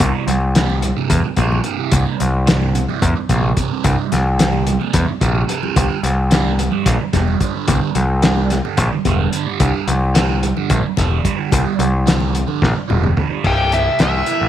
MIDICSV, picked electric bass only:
0, 0, Header, 1, 2, 480
1, 0, Start_track
1, 0, Tempo, 547945
1, 11, Time_signature, 7, 3, 24, 8
1, 12690, End_track
2, 0, Start_track
2, 0, Title_t, "Picked electric bass"
2, 0, Program_c, 0, 34
2, 4, Note_on_c, 0, 36, 107
2, 100, Note_off_c, 0, 36, 0
2, 237, Note_on_c, 0, 36, 80
2, 802, Note_off_c, 0, 36, 0
2, 962, Note_on_c, 0, 40, 102
2, 1058, Note_off_c, 0, 40, 0
2, 1203, Note_on_c, 0, 34, 85
2, 1392, Note_off_c, 0, 34, 0
2, 1686, Note_on_c, 0, 36, 108
2, 1781, Note_off_c, 0, 36, 0
2, 1932, Note_on_c, 0, 36, 80
2, 2491, Note_off_c, 0, 36, 0
2, 2649, Note_on_c, 0, 40, 100
2, 2742, Note_off_c, 0, 40, 0
2, 2888, Note_on_c, 0, 34, 79
2, 3075, Note_off_c, 0, 34, 0
2, 3369, Note_on_c, 0, 36, 105
2, 3462, Note_off_c, 0, 36, 0
2, 3614, Note_on_c, 0, 36, 79
2, 4173, Note_off_c, 0, 36, 0
2, 4330, Note_on_c, 0, 40, 97
2, 4423, Note_off_c, 0, 40, 0
2, 4570, Note_on_c, 0, 34, 86
2, 4757, Note_off_c, 0, 34, 0
2, 5053, Note_on_c, 0, 36, 108
2, 5145, Note_off_c, 0, 36, 0
2, 5285, Note_on_c, 0, 36, 82
2, 5848, Note_off_c, 0, 36, 0
2, 6012, Note_on_c, 0, 34, 102
2, 6105, Note_off_c, 0, 34, 0
2, 6252, Note_on_c, 0, 28, 75
2, 6438, Note_off_c, 0, 28, 0
2, 6729, Note_on_c, 0, 36, 107
2, 6824, Note_off_c, 0, 36, 0
2, 6969, Note_on_c, 0, 36, 86
2, 7531, Note_off_c, 0, 36, 0
2, 7689, Note_on_c, 0, 34, 109
2, 7784, Note_off_c, 0, 34, 0
2, 7932, Note_on_c, 0, 28, 83
2, 8119, Note_off_c, 0, 28, 0
2, 8415, Note_on_c, 0, 36, 105
2, 8508, Note_off_c, 0, 36, 0
2, 8651, Note_on_c, 0, 36, 83
2, 9213, Note_off_c, 0, 36, 0
2, 9374, Note_on_c, 0, 34, 105
2, 9467, Note_off_c, 0, 34, 0
2, 9615, Note_on_c, 0, 28, 75
2, 9801, Note_off_c, 0, 28, 0
2, 10099, Note_on_c, 0, 36, 104
2, 10191, Note_off_c, 0, 36, 0
2, 10327, Note_on_c, 0, 36, 82
2, 10891, Note_off_c, 0, 36, 0
2, 11055, Note_on_c, 0, 34, 96
2, 11149, Note_off_c, 0, 34, 0
2, 11308, Note_on_c, 0, 28, 82
2, 11490, Note_off_c, 0, 28, 0
2, 11776, Note_on_c, 0, 24, 86
2, 12150, Note_off_c, 0, 24, 0
2, 12261, Note_on_c, 0, 36, 87
2, 12446, Note_off_c, 0, 36, 0
2, 12627, Note_on_c, 0, 33, 78
2, 12690, Note_off_c, 0, 33, 0
2, 12690, End_track
0, 0, End_of_file